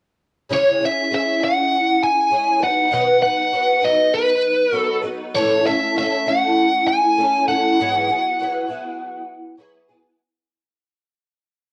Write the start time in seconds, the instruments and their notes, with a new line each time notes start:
0.49 twelve-string acoustic guitar C#3 G#3 C#4 E4 G#4, lead electric guitar C#5
0.80 twelve-string acoustic guitar C#4 E4 G#4
0.85 lead electric guitar E5
1.10 twelve-string acoustic guitar G#3 C#4 E4 G#4
1.15 lead electric guitar E5
1.40 twelve-string acoustic guitar C#4 E4 G#4, lead electric guitar F#5
2.04 lead electric guitar G#5
2.30 twelve-string acoustic guitar G#3 C#4 E4 G#4
2.59 twelve-string acoustic guitar F#3 B3 D#4 B4
2.64 lead electric guitar F#5
2.91 twelve-string acoustic guitar B2 D#3 F#3 B3 D#4 B4, lead electric guitar F#5
3.22 twelve-string acoustic guitar F#3 B3 D#4 B4, lead electric guitar F#5
3.52 twelve-string acoustic guitar F#3 B3 D#4 B4
3.81 twelve-string acoustic guitar F#3 B3 D#4 B4, lead electric guitar D#5
4.14 lead electric guitar B4
4.72 twelve-string acoustic guitar F#3 B3 D#4 B4, lead electric guitar A4
5.02 twelve-string acoustic guitar F#3 B3 D#4 B4
5.35 twelve-string acoustic guitar A2 E3 A3 C#4 E4 A4, lead electric guitar C#5
5.66 twelve-string acoustic guitar A3 C#4 E4 A4, lead electric guitar E5
5.96 twelve-string acoustic guitar A3 C#4 E4 A4, lead electric guitar E5
6.26 twelve-string acoustic guitar A3 C#4 E4 A4, lead electric guitar F#5
6.88 lead electric guitar G#5
7.17 twelve-string acoustic guitar A3 C#4 E4 A4
7.48 twelve-string acoustic guitar A3 C#4 E4 A4, lead electric guitar F#5
7.79 twelve-string acoustic guitar G#2 E3 F#3 B3 E4 G#4
8.09 twelve-string acoustic guitar F#3 B3 E4 G#4
8.39 twelve-string acoustic guitar F#3 B3 E4 G#4
8.68 twelve-string acoustic guitar B3 E4 G#4
8.72 twelve-string acoustic guitar F#3
9.57 twelve-string acoustic guitar F#3 B3 E4 G#4
9.88 twelve-string acoustic guitar F#3 B3 E4 G#4